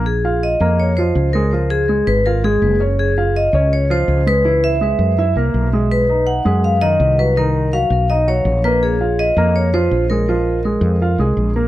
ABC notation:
X:1
M:4/4
L:1/8
Q:1/4=164
K:Bbm
V:1 name="Vibraphone"
A2 e2 d c2 B- | B A2 _c B A2 z | A2 e2 d c2 _c- | _c _f4 z3 |
=B2 ^f2 =f ^d2 B | B2 f2 ^d ^c2 =B | A2 e2 d c2 B- | B6 z2 |]
V:2 name="Grand piano"
z [Ff]2 [B,B]2 [F,F]2 [A,A] | [F,F]2 [A,A]2 [Ff] [A,A]2 [Dd]- | [Dd] [Ff]2 [Dd]2 [F,F]2 [A,A] | [_F,_F]2 [A,A]2 [=E=e] [B,B]2 [^G,^G]- |
[^G,^G] [^D^d]2 [G,G]2 [^D,D]2 [^F,^F] | [E,E]2 [G,G]2 [^D^d] [^F,^F]2 [B,B]- | [B,B] [Ff]2 [B,B]2 [F,F]2 [A,A] | [F,F]2 [A,A]2 [Ff] [A,A]2 [B,B] |]
V:3 name="Fretless electric bass" clef=bass
B,,,3 F,,3 D,,2- | D,,3 A,,,3 G,,,2- | G,,,3 D,,3 D,,2- | D,,3 G,,2 C,, _C,,2- |
_C,,3 ^F,,3 =C,,2- | C,,3 _C,,3 B,,,2- | B,,,3 F,,3 B,,,2- | B,,,3 F,,2 C,, B,,,2 |]